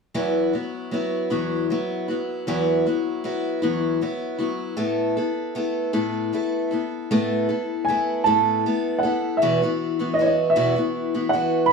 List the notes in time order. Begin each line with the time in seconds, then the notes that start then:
0.14 E2 E3 F#3 B3 E4 F#4
0.53 F#3 B3 E4 F#4
0.91 F#3 B3 E4 F#4
1.30 E2 E3 F#3 B3 E4 F#4
1.70 F#3 B3 E4 F#4
2.08 F#3 B3 E4 F#4
2.47 E2 E3 F#3 B3 E4 F#4
2.86 F#3 B3 E4 F#4
3.24 F#3 B3 E4 F#4
3.62 E2 E3 F#3 B3 E4 F#4
4.01 F#3 B3 E4 F#4
4.39 F#3 B3 E4 F#4
4.77 A2 A3 B3 E4 A4
5.17 B3 E4 A4
5.55 A3 B3 E4 A4
5.93 A2 A3 B3 E4 A4
6.33 A3 B3 E4 A4
6.71 B3 E4 A4
7.11 A2 A3 B3 E4 A4
7.49 B3 E4 A4
7.85 A3 G#5
7.89 B3 E4 A4
8.24 A2 A3 B3 E4 A4 A5
8.66 A3 B3 E4 A4
8.99 F#5
9.03 B3 E4 A4
9.37 E5
9.42 E2 B2 E3 B3 E4 F#4
9.62 E3 B3 E4 F#4
9.99 E3 B3 E4 F#4
10.14 D#5
10.19 E3 B3 E4 F#4 C#5
10.26 D#5
10.50 E5
10.56 E2 B2 E3 B3 E4 F#4
10.76 E3 B3 E4 F#4
11.14 E3 B3 E4 F#4
11.29 E3 F#5
11.34 B3 E4 F#4
11.66 B5